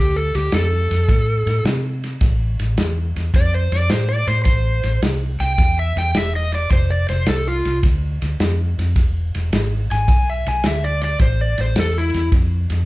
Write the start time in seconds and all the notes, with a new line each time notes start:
Already playing: D2 G4
0.16 A4
0.35 D2 G4, snare, ride
0.52 F2 A4, snare, ride
0.91 F2, snare, ride
1.09 A2, kick, snare, ride
1.46 A2, snare, ride
1.65 C3, snare, ride
2.04 snare, ride
2.21 A1, kick, snare, ride
2.59 A1, snare, ride
2.77 E2, snare, ride
3.16 E2, snare, ride
3.34 F2 D5, kick, snare, ride
3.54 C5
3.72 F2 D5, snare, ride
3.89 A2 C5, snare, ride
4.09 D5
4.27 A2 C5, snare, ride
4.45 A1 C5, kick, snare, ride
4.83 A1, snare, ride
5.02 C2, snare, ride
5.40 C2 G5, snare, ride
5.58 E2, kick, snare, ride
5.79 E5
5.96 E2 G5, snare, ride
6.14 E1 E5, snare, ride
6.36 D#5
6.52 D5, snare, ride
6.70 F1 C5, kick, snare, ride
6.90 D5
7.08 F1 C5, snare, ride
7.26 C2 A4, snare, ride
7.48 F4
7.65 C2, snare, ride
7.83 D2, kick, snare, ride
8.22 D2, snare, ride
8.40 F2, snare, ride
8.78 F2, snare, ride
8.96 E1, kick, snare, ride
9.35 E1, snare, ride
9.53 G#1, snare, ride
9.91 G#1 G#5, snare, ride
10.08 B1, kick, snare, ride
10.30 E5
10.46 B1 G#5, snare, ride
10.64 D2 E5, snare, ride
10.84 D5
11.01 D5, snare, ride
11.19 A1 C5, kick, snare, ride
11.41 D5
11.58 A1 C5, snare, ride
11.76 E2 A4, snare, ride
11.98 E4
12.14 E2, snare, ride
12.32 F2, kick, snare, ride
12.70 F2, snare, ride